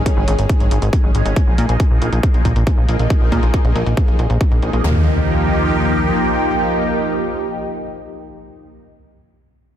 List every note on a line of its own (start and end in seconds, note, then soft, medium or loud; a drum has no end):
0.06 kick loud
0.06 closed hi-hat medium
0.17 0.25 G#1 medium
0.17 0.32 D#3 medium
0.17 0.32 G#3 medium
0.17 0.32 C#4 medium
0.17 0.32 G#4 medium
0.28 0.36 G#1 loud
0.28 closed hi-hat medium
0.39 0.47 G#1 medium
0.39 closed hi-hat soft
0.49 0.65 D#3 medium
0.49 0.65 G#3 medium
0.49 0.65 C#4 medium
0.49 0.65 G#4 medium
0.49 kick loud
0.49 closed hi-hat medium
0.60 0.68 G#1 medium
0.60 closed hi-hat soft
0.71 0.79 G#1 loud
0.71 closed hi-hat medium
0.82 0.90 G#1 medium
0.82 closed hi-hat medium
0.93 1.08 D#3 medium
0.93 1.08 G#3 medium
0.93 1.08 C#4 medium
0.93 1.08 G#4 medium
0.93 kick loud
0.93 closed hi-hat medium
1.04 1.12 G#1 medium
1.15 1.23 G#1 medium
1.15 1.22 D#3 medium
1.15 1.22 G#3 medium
1.15 1.22 C#4 medium
1.15 1.22 G#4 medium
1.15 closed hi-hat medium
1.26 1.33 G#1 medium
1.26 1.33 D#3 medium
1.26 1.33 G#3 medium
1.26 1.33 C#4 medium
1.26 1.33 G#4 medium
1.26 closed hi-hat soft
1.36 1.52 F3 medium
1.36 1.52 A#3 medium
1.36 1.52 D#4 medium
1.36 1.52 G#4 medium
1.36 kick loud
1.36 closed hi-hat medium
1.47 1.55 A#1 medium
1.58 1.66 A#2 loud
1.58 1.73 F3 medium
1.58 1.73 A#3 medium
1.58 1.73 D#4 medium
1.58 1.73 G#4 medium
1.58 closed hi-hat medium
1.69 1.77 A#1 medium
1.69 closed hi-hat medium
1.80 kick loud
1.80 closed hi-hat medium
1.91 1.99 A#1 medium
1.91 2.06 F3 medium
1.91 2.06 A#3 medium
1.91 2.06 D#4 medium
1.91 2.06 G#4 medium
2.02 2.10 A#1 loud
2.02 closed hi-hat medium
2.12 2.20 A#1 medium
2.12 closed hi-hat soft
2.23 2.39 F3 medium
2.23 2.39 A#3 medium
2.23 2.39 D#4 medium
2.23 2.39 G#4 medium
2.23 kick loud
2.23 closed hi-hat medium
2.34 2.42 A#1 medium
2.34 closed hi-hat soft
2.45 2.53 A#1 loud
2.45 kick medium
2.45 closed hi-hat medium
2.56 2.64 A#1 medium
2.56 closed hi-hat medium
2.67 2.82 F3 medium
2.67 2.82 A#3 medium
2.67 2.82 D#4 medium
2.67 2.82 G#4 medium
2.67 kick loud
2.67 closed hi-hat medium
2.78 2.86 A#1 medium
2.89 2.96 A#1 medium
2.89 2.96 F3 medium
2.89 2.96 A#3 medium
2.89 2.96 D#4 medium
2.89 2.96 G#4 medium
2.89 closed hi-hat medium
2.99 3.07 A#1 medium
2.99 3.07 F3 medium
2.99 3.07 A#3 medium
2.99 3.07 D#4 medium
2.99 3.07 G#4 medium
2.99 closed hi-hat soft
3.10 3.25 F3 medium
3.10 3.25 A#3 medium
3.10 3.25 D#4 medium
3.10 3.25 G#4 medium
3.10 kick loud
3.10 closed hi-hat medium
3.21 3.29 A#1 medium
3.32 3.40 A#2 loud
3.32 3.47 F3 medium
3.32 3.47 A#3 medium
3.32 3.47 D#4 medium
3.32 3.47 G#4 medium
3.32 kick medium
3.32 closed hi-hat medium
3.43 3.51 A#1 medium
3.43 closed hi-hat soft
3.54 kick loud
3.54 closed hi-hat medium
3.65 3.73 A#1 medium
3.65 3.80 F3 medium
3.65 3.80 A#3 medium
3.65 3.80 D#4 medium
3.65 3.80 G#4 medium
3.65 closed hi-hat soft
3.75 3.83 A#1 loud
3.75 closed hi-hat medium
3.86 3.94 A#1 medium
3.86 closed hi-hat medium
3.97 4.12 F3 medium
3.97 4.12 A#3 medium
3.97 4.12 D#4 medium
3.97 4.12 G#4 medium
3.97 kick loud
3.97 closed hi-hat medium
4.08 4.16 A#1 medium
4.08 closed hi-hat soft
4.19 4.27 A#1 loud
4.19 closed hi-hat medium
4.30 4.38 A#1 medium
4.30 closed hi-hat medium
4.41 4.56 F3 medium
4.41 4.56 A#3 medium
4.41 4.56 D#4 medium
4.41 4.56 G#4 medium
4.41 kick loud
4.41 closed hi-hat medium
4.52 4.60 A#1 medium
4.52 closed hi-hat soft
4.62 4.70 A#1 loud
4.62 4.70 F3 medium
4.62 4.70 A#3 medium
4.62 4.70 D#4 medium
4.62 4.70 G#4 medium
4.62 closed hi-hat medium
4.73 4.81 A#1 medium
4.73 4.81 F3 medium
4.73 4.81 A#3 medium
4.73 4.81 D#4 medium
4.73 4.81 G#4 medium
4.73 closed hi-hat medium
4.84 6.11 D#2 loud
4.84 8.77 F3 medium
4.84 8.77 A#3 medium
4.84 8.77 D#4 medium
4.84 8.77 G4 medium
4.84 impact medium